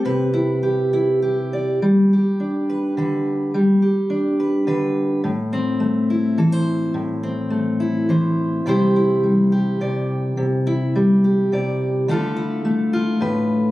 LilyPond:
\new Staff \with { instrumentName = "Steel-string acoustic guitar" } { \time 3/4 \key c \major \tempo 4 = 105 << { <c' b'>8 e'8 g'8 e'8 g'8 d''8 | r8 g'4 b'8 b'4 | r8 g'4 b'8 b'4 | r8 c'4 e'8 a'16 c''8. |
r8 c'4 e'8 c''4 | <g e' g' c''>8 e'4 g'8 d''4 | r8 e'4 g'8 d''4 | <a e' f' a'>8 e'4 f'8 b'4 | } \\ { c2. | g4 d'4 d4 | g4 d'4 d4 | a,4 a4 e4 |
a,4 a4 e4 | c4 g4 c4 | c4 g4 c4 | d4 a4 a,4 | } >> }